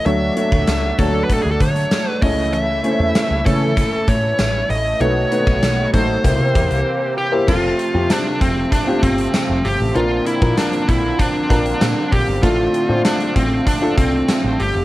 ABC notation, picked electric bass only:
X:1
M:4/4
L:1/16
Q:1/4=97
K:Alyd
V:1 name="Picked electric bass" clef=bass
=D,,2 z D,, C,,2 D,,2 z D,, =D,2 z2 C,,2- | C,,3 E,, z C,, C,3 z A,,2 A,,,2 A,,,2 | B,,,2 z B,,, B,,,2 A,,,2 =C,, =C, E,, C,, z4 | [K:F] F,,,2 z F,, z2 F,,,2 z2 G,,,2 z F,,, G,,, A,,, |
B,,,2 z B,, z2 B,,,2 z2 B,,,2 B,, z B,,, G,,, | A,,,2 z A,, z2 A,,,2 z2 C,,2 z A,,, G,,, F,,, |]